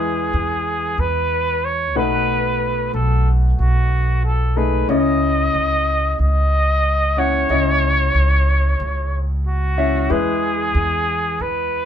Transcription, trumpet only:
0.00 1.01 G#4 medium
1.00 1.66 B4 medium
1.64 1.97 C#5 medium
1.97 2.90 B4 medium
2.94 3.29 A4 medium
3.60 4.20 F#4 medium
4.25 4.58 A4 medium
4.57 4.89 B4 medium
4.90 6.16 D#5 loud
6.21 7.20 D#5 loud
7.18 9.19 C#5 loud
9.46 10.13 F#4 medium
10.11 11.43 G#4 medium
11.42 11.85 B4 medium

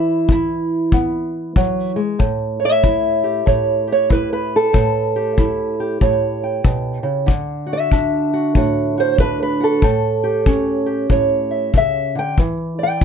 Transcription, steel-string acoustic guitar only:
0.00 2.18 E3 medium
0.00 0.31 E4 loud
0.32 1.96 E4 medium
0.93 1.56 B3 medium
1.56 1.96 F#3 medium
1.96 2.19 G#3 medium
2.19 3.46 A2 medium
2.60 3.46 C#5 soft
2.65 4.54 E5 medium
2.83 4.08 E4 medium
3.24 3.86 G4 soft
3.46 4.72 A2 medium
3.46 3.89 C#5 soft
3.87 4.71 G4 soft
3.92 4.12 C#5 medium
4.09 4.71 E4 medium
4.09 4.32 B4 medium
4.33 5.17 B4 medium
4.56 5.82 A4 medium
4.73 6.00 A2 medium
5.16 5.79 G4 soft
5.37 7.26 E4 medium
5.80 7.27 G4 soft
6.01 6.64 A2 medium
6.01 7.26 C#5 soft
6.44 7.27 G5 soft
6.64 7.03 B2 medium
7.03 7.27 C#3 medium
7.26 9.82 D3 medium
7.67 8.31 F#4 soft
7.73 9.63 E5 medium
7.92 9.19 D4 medium
8.33 8.55 F#4 medium
8.56 9.82 A2 medium
8.56 8.96 F#4 soft
8.98 9.59 F#4 soft
8.98 9.20 C5 medium
9.20 9.81 D4 medium
9.20 9.41 B4 medium
9.42 9.84 B4 loud
9.60 9.81 F#4 soft
9.60 10.90 A4 medium
9.83 11.08 A2 medium
10.24 10.85 G4 medium
10.46 12.35 C#4 medium
10.86 12.34 G4 soft
11.10 11.74 A2 medium
11.10 12.35 C#5 soft
11.51 11.77 E5 soft
11.74 12.15 C#3 medium
11.74 12.18 E5 loud
12.15 12.38 D3 medium
12.15 12.39 G5 medium
12.39 13.04 E3 medium
12.79 13.04 D5 soft
12.83 13.04 G5 medium
13.01 13.04 E4 medium

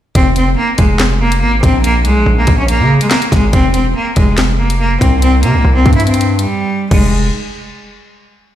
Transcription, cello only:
0.16 0.32 C4 loud
0.37 0.53 C4 medium
0.57 0.74 A#3 medium
0.78 0.95 G#3 medium
1.21 1.37 A#3 medium
1.42 1.58 A#3 medium
1.63 1.79 C4 medium
1.84 2.00 A#3 medium
2.06 2.36 G#3 loud
2.38 2.54 A#3 medium
2.58 2.66 C#4 medium
2.69 2.99 A#3 medium
3.02 3.09 G#3 medium
3.11 3.27 A#3 medium
3.33 3.49 G#3 medium
3.53 3.70 C4 loud
3.74 3.91 C4 medium
3.96 4.12 A#3 medium
4.17 4.33 G#3 medium
4.59 4.75 A#3 medium
4.80 4.97 A#3 medium
5.01 5.17 C4 medium
5.22 5.38 C4 medium
5.43 5.74 A#3 medium
5.75 5.92 C4 medium
5.96 6.04 E4 medium
6.07 6.37 C4 medium
6.39 6.88 G3 medium
6.91 7.11 G#3 medium

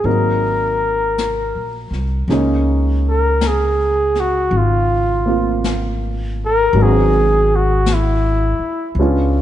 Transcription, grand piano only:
0.04 2.29 F#3 soft
0.04 2.29 A#3 soft
0.04 2.30 C4 soft
0.04 2.29 D#4 soft
2.29 6.75 C#3 soft
2.29 6.74 G#3 soft
2.29 5.24 A#3 soft
2.29 6.76 C#4 soft
2.29 6.76 D#4 medium
5.26 6.75 A#3 soft
5.26 6.75 C4 soft
5.26 6.76 F4 soft
6.74 8.97 F#3 soft
6.74 8.98 G#3 soft
6.74 8.97 B3 soft
6.78 8.98 D4 soft
6.78 9.00 F#4 medium
8.99 9.42 G#3 soft
8.99 9.42 B3 soft
8.99 9.42 C#4 soft
8.99 9.42 D4 soft
8.99 9.42 F4 medium

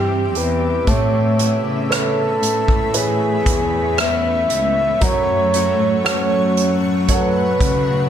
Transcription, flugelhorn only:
0.00 0.39 G4 medium
0.37 0.91 B4 medium
0.89 1.65 C#5 medium
1.94 2.98 A4 medium
2.97 4.02 G#4 medium
4.00 5.05 E5 medium
5.03 6.06 C#5 medium
6.06 6.78 C#5 medium
7.11 8.09 B4 medium

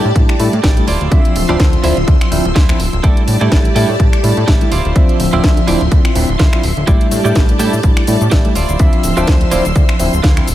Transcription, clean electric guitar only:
0.15 muted clean electric guitar stroke soft
0.63 0.86 E4 medium
0.63 0.87 G4 medium
0.63 0.87 A4 medium
0.63 0.87 D5 medium
0.87 1.35 E4 medium
0.87 1.36 F4 medium
0.87 1.36 C5 medium
0.87 1.36 D5 medium
1.49 1.66 E4 medium
1.49 1.66 F4 medium
1.49 1.66 C5 medium
1.49 1.67 D5 medium
1.83 1.97 E4 medium
1.83 1.97 F4 medium
1.83 1.97 C5 medium
1.83 1.97 E5 medium
2.07 muted clean electric guitar stroke soft
2.55 2.79 E4 medium
2.55 2.80 F4 medium
2.55 2.80 C5 medium
2.55 2.80 E5 medium
3.03 3.22 E4 loud
3.03 3.22 G4 loud
3.03 3.22 A4 loud
3.03 3.23 D5 loud
3.41 3.58 E4 medium
3.41 3.58 G4 medium
3.41 3.58 A4 medium
3.41 3.59 D5 medium
3.76 3.89 E4 medium
3.76 3.89 G4 medium
3.76 3.89 A4 medium
3.76 3.89 D5 medium
3.99 muted clean electric guitar stroke soft
4.47 4.70 E4 medium
4.47 4.71 G4 medium
4.47 4.71 A4 medium
4.47 4.72 E5 medium
4.71 5.19 E4 medium
4.71 5.20 F4 medium
4.71 5.20 C5 medium
4.71 5.20 D5 loud
5.33 5.50 E4 medium
5.33 5.50 F4 medium
5.33 5.50 C5 medium
5.33 5.51 D5 medium
5.67 5.81 E4 medium
5.67 5.81 F4 medium
5.67 5.81 C5 medium
5.67 5.81 D5 medium
5.91 muted clean electric guitar stroke soft
6.39 6.63 E4 medium
6.39 6.63 F4 medium
6.39 6.64 C5 medium
6.39 6.64 E5 medium
6.87 7.06 E4 loud
6.87 7.06 G4 loud
6.87 7.06 A4 medium
6.87 7.06 D5 loud
7.25 7.42 E4 medium
7.25 7.42 G4 medium
7.25 7.42 A4 medium
7.25 7.43 D5 medium
7.59 7.73 E4 medium
7.59 7.73 G4 medium
7.59 7.73 A4 medium
7.59 7.73 E5 medium
7.83 muted clean electric guitar stroke soft
8.31 8.54 E4 medium
8.31 8.55 G4 medium
8.31 8.55 A4 medium
8.31 8.56 E5 medium
8.55 9.03 E4 medium
8.55 9.04 F4 medium
8.55 9.04 C5 medium
8.55 9.04 D5 medium
9.17 9.34 E4 medium
9.17 9.34 F4 medium
9.17 9.34 C5 medium
9.17 9.35 D5 medium
9.51 9.65 E4 medium
9.51 9.65 F4 medium
9.51 9.65 C5 medium
9.51 9.65 D5 medium
9.75 muted clean electric guitar stroke soft
10.23 10.47 E4 medium
10.23 10.48 F4 medium
10.23 10.48 C5 medium
10.23 10.48 F5 medium

